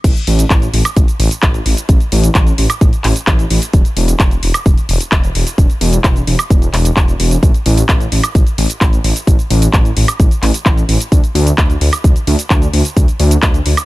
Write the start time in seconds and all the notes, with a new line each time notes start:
0.04 A1, kick, closed hi-hat, crash, shaker
0.16 closed hi-hat, shaker
0.27 A1, open hi-hat
0.39 closed hi-hat, shaker
0.50 A1, kick, clap, closed hi-hat, shaker
0.62 closed hi-hat, shaker
0.73 A1, open hi-hat
0.85 closed hi-hat, high woodblock, shaker
0.97 A1, kick, closed hi-hat, shaker
1.08 closed hi-hat, shaker
1.20 A1, open hi-hat
1.31 closed hi-hat, shaker
1.43 A1, kick, clap, closed hi-hat, shaker
1.54 closed hi-hat, shaker
1.66 A1, open hi-hat
1.77 closed hi-hat, shaker
1.89 A1, kick, closed hi-hat, shaker
2.00 closed hi-hat, shaker
2.12 A1, open hi-hat
2.24 closed hi-hat, shaker
2.35 A1, kick, clap, closed hi-hat, shaker
2.47 closed hi-hat, shaker
2.58 A1, open hi-hat
2.70 closed hi-hat, high woodblock, shaker
2.81 A1, kick, closed hi-hat, shaker
2.93 closed hi-hat, shaker
3.04 A1, clap, open hi-hat
3.16 closed hi-hat, shaker
3.27 A1, kick, clap, closed hi-hat, shaker
3.39 closed hi-hat, shaker
3.50 A1, open hi-hat
3.62 closed hi-hat, shaker
3.73 E1, kick, closed hi-hat, shaker
3.85 closed hi-hat, shaker
3.96 E1, open hi-hat
4.08 closed hi-hat, shaker
4.20 E1, kick, clap, closed hi-hat, shaker
4.31 closed hi-hat, shaker
4.43 E1, open hi-hat
4.54 closed hi-hat, high woodblock, shaker
4.66 E1, kick, closed hi-hat, shaker
4.78 closed hi-hat, shaker
4.89 E1, open hi-hat
5.01 closed hi-hat, shaker
5.12 E1, kick, clap, closed hi-hat, shaker
5.24 closed hi-hat, shaker
5.35 E1, open hi-hat
5.47 closed hi-hat, shaker
5.58 E1, kick, closed hi-hat, shaker
5.70 closed hi-hat, shaker
5.81 E1, open hi-hat
5.93 closed hi-hat, shaker
6.04 E1, kick, clap, closed hi-hat, shaker
6.16 closed hi-hat, shaker
6.27 E1, open hi-hat
6.39 closed hi-hat, high woodblock, shaker
6.50 E1, kick, closed hi-hat, shaker
6.62 closed hi-hat, shaker
6.73 E1, clap, open hi-hat
6.85 closed hi-hat, shaker
6.97 E1, kick, clap, closed hi-hat, shaker
7.08 closed hi-hat, shaker
7.20 E1, open hi-hat
7.31 closed hi-hat, shaker
7.43 A1, kick, closed hi-hat, shaker
7.54 closed hi-hat, shaker
7.66 A1, open hi-hat
7.77 closed hi-hat, shaker
7.89 A1, kick, clap, closed hi-hat, shaker
8.00 closed hi-hat, shaker
8.12 A1, open hi-hat
8.23 closed hi-hat, high woodblock, shaker
8.35 A1, kick, closed hi-hat, shaker
8.47 closed hi-hat, shaker
8.58 A1, open hi-hat
8.70 closed hi-hat, shaker
8.81 A1, kick, clap, closed hi-hat, shaker
8.93 closed hi-hat, shaker
9.04 A1, open hi-hat
9.16 closed hi-hat, shaker
9.27 A1, kick, closed hi-hat, shaker
9.39 closed hi-hat, shaker
9.50 A1, open hi-hat
9.62 closed hi-hat, shaker
9.73 A1, kick, clap, closed hi-hat, shaker
9.85 closed hi-hat, shaker
9.97 A1, open hi-hat
10.08 closed hi-hat, high woodblock, shaker
10.20 A1, kick, closed hi-hat, shaker
10.31 closed hi-hat, shaker
10.43 A1, clap, open hi-hat
10.54 closed hi-hat, shaker
10.66 A1, kick, clap, closed hi-hat, shaker
10.77 closed hi-hat, shaker
10.89 A1, open hi-hat
11.01 closed hi-hat, shaker
11.12 D2, kick, closed hi-hat, shaker
11.24 closed hi-hat, shaker
11.35 D2, open hi-hat
11.47 closed hi-hat, shaker
11.58 D2, kick, clap, closed hi-hat, shaker
11.70 closed hi-hat, shaker
11.81 D2, open hi-hat
11.93 closed hi-hat, high woodblock, shaker
12.04 D2, kick, closed hi-hat, shaker
12.16 closed hi-hat, shaker
12.27 D2, open hi-hat
12.39 closed hi-hat, shaker
12.50 D2, kick, clap, closed hi-hat, shaker
12.62 closed hi-hat, shaker
12.73 D2, open hi-hat
12.85 closed hi-hat, shaker
12.97 D2, kick, closed hi-hat, shaker
13.08 closed hi-hat, shaker
13.20 D2, open hi-hat
13.31 closed hi-hat, shaker
13.42 D2, kick, clap, closed hi-hat, shaker
13.54 closed hi-hat, shaker
13.66 D2, open hi-hat
13.77 closed hi-hat, high woodblock, shaker